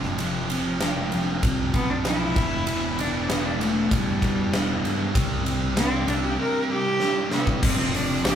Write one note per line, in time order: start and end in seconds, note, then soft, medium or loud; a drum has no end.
0.00 1.08 F1 medium
0.00 0.17 F2 medium
0.00 0.18 C3 medium
0.00 0.19 F3 loud
0.00 snare soft
0.06 0.50 F3 medium
0.18 0.49 F2 loud
0.18 0.49 C3 loud
0.18 0.50 F3 loud
0.18 ride loud
0.50 0.80 F2 medium
0.50 0.80 C3 medium
0.50 0.81 F3 loud
0.50 1.12 F3 loud
0.50 ride medium
0.81 1.10 F2 medium
0.81 1.11 C3 medium
0.81 1.12 F3 medium
0.81 snare loud
0.81 ride medium
1.12 1.42 F1 medium
1.12 1.42 F2 medium
1.12 1.43 C3 medium
1.12 1.43 F3 medium
1.12 ride medium
1.43 1.72 C2 medium
1.43 1.72 F2 medium
1.43 1.73 C3 medium
1.43 1.73 F3 medium
1.43 kick loud
1.43 ride loud
1.73 2.32 B1 medium
1.73 2.03 F2 medium
1.73 2.04 C3 loud
1.73 2.04 F3 loud
1.73 1.92 B3 loud
1.73 kick medium
1.73 ride medium
1.90 2.04 D4 medium
2.04 2.34 F2 medium
2.04 2.34 C3 medium
2.04 2.34 F3 loud
2.04 3.02 E4 loud
2.04 snare loud
2.04 ride medium
2.35 2.65 E1 loud
2.35 2.64 E2 medium
2.35 2.65 B2 loud
2.35 2.66 E3 loud
2.35 kick loud
2.35 ride medium
2.66 3.87 E1 medium
2.66 2.96 E2 medium
2.66 2.98 B2 loud
2.66 2.99 E3 loud
2.66 ride loud
2.97 3.27 E2 medium
2.97 3.28 B2 loud
2.97 3.30 E3 medium
2.97 3.30 D4 medium
2.97 ride medium
3.28 3.57 E2 medium
3.28 3.58 B2 loud
3.28 3.60 E3 medium
3.28 3.47 B3 medium
3.28 snare loud
3.28 ride loud
3.45 3.59 D4 medium
3.58 3.88 E2 medium
3.58 3.89 B2 medium
3.58 3.90 E3 loud
3.58 3.93 A3 medium
3.58 ride medium
3.90 4.20 E1 medium
3.90 4.19 E2 medium
3.90 4.20 B2 medium
3.90 4.20 E3 medium
3.90 5.12 G3 loud
3.90 kick loud
3.90 ride medium
4.20 4.80 E1 medium
4.20 4.50 E2 medium
4.20 4.50 B2 loud
4.20 4.51 E3 medium
4.20 kick medium
4.20 ride medium
4.51 4.81 E2 medium
4.51 4.82 B2 medium
4.51 4.82 E3 medium
4.51 snare loud
4.51 ride medium
4.82 5.12 E2 medium
4.82 5.13 G2 medium
4.82 5.13 B2 loud
4.82 5.13 E3 loud
4.82 snare soft
4.82 ride medium
5.13 6.04 C2 medium
5.13 5.43 C3 loud
5.13 5.44 G3 loud
5.13 5.45 C4 loud
5.13 kick loud
5.13 ride loud
5.44 5.74 C3 loud
5.44 5.74 G3 medium
5.44 5.75 C4 loud
5.44 ride medium
5.75 6.05 C3 medium
5.75 6.06 G3 medium
5.75 6.07 C4 loud
5.75 6.09 C4 loud
5.75 snare loud
5.75 ride loud
6.06 6.36 C2 medium
6.06 6.36 C3 medium
6.06 6.37 G3 medium
6.06 6.37 C4 medium
6.06 6.27 D4 medium
6.06 ride medium
6.25 6.39 G4 medium
6.37 6.68 C3 medium
6.37 6.68 G3 medium
6.37 6.69 C4 medium
6.41 6.70 A#4 medium
6.69 6.99 C3 medium
6.69 7.00 G3 loud
6.69 7.01 C4 loud
6.69 7.31 G4 loud
7.00 7.29 C3 medium
7.00 7.30 G3 medium
7.00 7.30 C4 medium
7.00 snare medium
7.30 7.60 C3 medium
7.30 7.60 G3 medium
7.30 7.61 C4 loud
7.30 snare loud
7.35 7.62 B3 medium
7.47 kick medium
7.63 7.77 G1 loud
7.63 7.77 G2 loud
7.63 7.77 D3 loud
7.63 7.97 C4 loud
7.63 kick loud
7.63 crash loud
7.77 8.21 F1 medium
7.77 8.23 F2 medium
7.77 8.23 C3 loud
7.77 8.23 F3 medium
7.94 8.27 D4 loud
7.94 open hi-hat medium
8.24 8.35 A#1 loud
8.24 8.35 A#2 medium
8.24 8.35 F3 medium
8.24 8.35 G4 loud
8.24 snare loud
8.24 open hi-hat medium